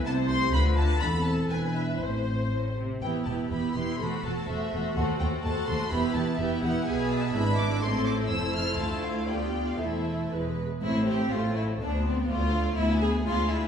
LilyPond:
<<
  \new Staff \with { instrumentName = "Violin section" } { \time 2/4 \key a \minor \tempo 4 = 124 a''8 c'''8 b''8 a''8 | b''8 a''8 gis''8 e''8 | c''4. r8 | \key e \minor g''8 a''8 b''8 c'''8 |
b''8 a''8 e''4 | fis''8 g''8 a''8 bis''8 | b''8 a''8 e''8 fis''8 | \key a \minor gis''8 a''8 b''8 d'''8 |
c'''8 d'''8 e'''8 f'''8 | a''8 f''8 g''8. f''16 | e''4 r4 | a'16 c''16 a'16 c''16 a'16 c''16 a'16 c''16 |
d''16 c''16 d''16 c''16 d''16 c''16 d''16 c''16 | b''16 aes''16 b''16 aes''16 b''16 aes''16 b''16 aes''16 | }
  \new Staff \with { instrumentName = "Violin section" } { \time 2/4 \key a \minor << { a''8 c'''8 b''8 a''8 | b''8 a''8 gis''8 e''8 | c''4. r8 | \key e \minor b'8 b'8 b'8 b'8 |
c''8 c''8 c''8 c''8 | bis'8 bis'8 bis'8 bis'8 | b'8 b'8 b'8 b'8 | \key a \minor e''2 |
c''2~ | c''4 d''4 | c''4 b'8 r8 | e'8 g'8 f'8 e'8 |
d'8 c'8 f'4 | e'8 aes'8 f'8 e'8 | } \\ { r2 | r2 | r2 | g'8 g'8 g'8 g'8 |
a'8 a'8 a'8 a'8 | a'8 a'8 a'8 a'8 | g'8 g'8 g'8 g'8 | b'4 b'4 |
a'4 a'4 | f'4 g'4 | a'4 b'8 r8 | r2 |
r2 | r2 | } >> }
  \new Staff \with { instrumentName = "French horn section" } { \time 2/4 \key a \minor << { e'4 f'4 | e'2~ | e'4. r8 | \key e \minor r2 |
r2 | r2 | r2 | \key a \minor r2 |
r2 | r2 | r2 | r2 |
r2 | r2 | } \\ { a2 | c'4 d'4 | c'4. r8 | r2 |
r2 | r2 | r2 | r2 |
r2 | r2 | r2 | r2 |
r2 | r2 | } >> }
  \new Staff \with { instrumentName = "Viola section" } { \time 2/4 \key a \minor << { c''4 b'4 | a'4 b'4 | c''4. r8 | \key e \minor e'8 e'8 e'8 e'8 |
fis'8 fis'8 fis'8 fis'8 | fis'8 fis'8 fis'8 fis'8 | e'8 e'8 e'8 e'8 | \key a \minor gis'4 e'4 |
e'2~ | e'4 f'4 | e'4 e'8 r8 | c'4 a4 |
b4 a4 | b4 aes4 | } \\ { r2 | r2 | r2 | b8 b8 b8 b8 |
a8 a8 a8 a8 | a8 a8 a8 a8 | b8 b8 b8 b8 | b4 d'4 |
c'4 a4 | a4 b4 | a4 gis8 r8 | r2 |
r2 | r2 | } >> }
  \new Staff \with { instrumentName = "Cello section" } { \clef bass \time 2/4 \key a \minor c4 d4 | e,4 e,4 | a,4 a,8 c8 | \key e \minor e,8 e,8 e,8 e,8 |
e,8 e,8 e,8 e,8 | dis,8 dis,8 dis,8 dis,8 | e,8 e,8 e,8 e,8 | \key a \minor b,4 gis,4 |
a,4 f,4 | d,2 | e,4 e,8 r8 | a,4 a,4 |
d,4 d,4 | d,4 d,4 | }
  \new Staff \with { instrumentName = "Double bass section" } { \clef bass \time 2/4 \key a \minor c,4 d,4 | e,,4 e,,4 | a,,4. r8 | \key e \minor e,,8 e,,8 e,,8 e,,8 |
e,,8 e,,8 e,,8 e,,8 | dis,8 dis,8 dis,8 dis,8 | e,,8 e,,8 e,,8 e,,8 | \key a \minor b,,4 gis,,4 |
a,,4 f,,4 | d,2 | e,,4 e,,8 r8 | a,,4 a,,4 |
d,4 d,4 | d,4 d,4 | }
>>